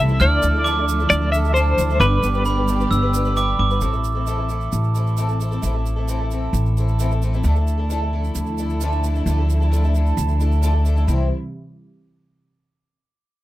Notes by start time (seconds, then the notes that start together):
Already playing: C2 C3 E3 A3 E4 E6
0.00 E5
0.08 A3 C4 E4 A4, shaker
0.20 D2 D3 F3 A3 D4 E4 A4 D5 F6, shaker
0.42 D2 A3 D4 E4 A4, shaker
0.54 A3 D4 E4 A4
0.64 D3 F3 A3 D4 E4 A4 D6, shaker
0.78 A3 D4 E4 A4
0.89 A3 D4 E4 A4, shaker
1.00 A3 D4 E4 A4, shaker
1.10 D2 D5, shaker
1.21 A3 D4 E4 A4
1.32 A3 D4 E4 A4 E5, shaker
1.44 A3 D4 E4 A4, shaker
1.54 D3 F3 A3 D4 E4 A4 C5, shaker
1.78 D2, shaker
1.90 A3 D4 E4 A4, shaker
2.00 G1 G3 B3 D4 G4 B4 D6, shaker
2.23 G1 G3 D4 G4 B4, shaker
2.34 D4 G4 B4, shaker
2.45 G3 D4 G4 B4 B5, shaker
2.58 D4 G4 B4
2.68 G3 D4 G4 B4, shaker
2.80 D4 G4 B4, shaker
2.91 G1 E6, shaker
3.02 D4 G4 B4
3.14 G3 D4 G4 B4, shaker
3.25 D4 G4 B4, shaker
3.36 G3 D4 G4 B4 D6, shaker
3.59 G1 D6
3.70 D4 G4 B4, shaker
3.81 A1 A2 E3 A3 C4 E4 A4, shaker
3.92 A3 C4 E4 A4, shaker
4.04 shaker
4.15 A3 C4 E4 A4
4.27 A2 E3 A3 C4 E4 A4, shaker
4.37 A3 C4 E4 A4
4.49 A3 C4 E4 A4, shaker
4.61 shaker
4.72 A1, shaker
4.84 shaker
4.94 A3 C4 E4 A4, shaker
5.07 shaker
5.17 A2 E3 A3 C4 E4 A4, shaker
5.28 A3 C4 E4 A4, shaker
5.40 A3 C4 E4 A4, shaker
5.51 A3 C4 E4 A4, shaker
5.62 A1 A2 E3 A3 C4 E4 A4, shaker
5.73 A3 C4 E4 A4
5.86 shaker
5.96 A3 C4 E4 A4
6.08 A2 E3 A3 C4 E4 A4, shaker
6.20 A3 C4 E4 A4
6.31 A3 C4 E4 A4, shaker
6.53 A1, shaker
6.66 shaker
6.77 A3 C4 E4 A4, shaker
6.88 shaker
6.99 A2 E3 A3 C4 E4 A4, shaker
7.11 A3 C4 E4 A4, shaker
7.22 A3 C4 E4 A4, shaker
7.33 A3 C4 E4 A4, shaker
7.44 D2 D3 F3 A3 D4 E4 A4, shaker
7.55 A3 D4 E4 A4, shaker
7.67 shaker
7.78 A3 D4 E4 A4
7.90 D3 F3 A3 D4 E4 A4, shaker
8.01 A3 D4 E4 A4
8.13 A3 D4 E4 A4
8.24 shaker
8.35 D2, shaker
8.47 shaker
8.58 A3 D4 E4 A4, shaker
8.70 shaker
8.81 D3 F3 A3 D4 E4 A4, shaker
8.92 shaker
9.04 A3 D4 E4 A4, shaker
9.15 A3 D4 E4 A4, shaker
9.26 D2 D3 F3 A3 D4 E4 A4, shaker
9.39 A3 D4 E4 A4
9.50 shaker
9.60 A3 D4 E4 A4, shaker
9.72 D3 F3 A3 D4 E4 A4, shaker
9.84 A3 D4 E4 A4, shaker
9.94 A3 D4 E4 A4, shaker
10.06 shaker
10.17 D2, shaker
10.29 shaker
10.40 A3 D4 E4 A4, shaker
10.52 shaker
10.62 D3 F3 A3 D4 E4 A4, shaker
10.73 A3 D4 E4 A4
10.85 A3 D4 E4 A4, shaker
10.96 A3 D4 E4 A4, shaker
11.07 C2 C3 E3 G3 C4 E4 C5, shaker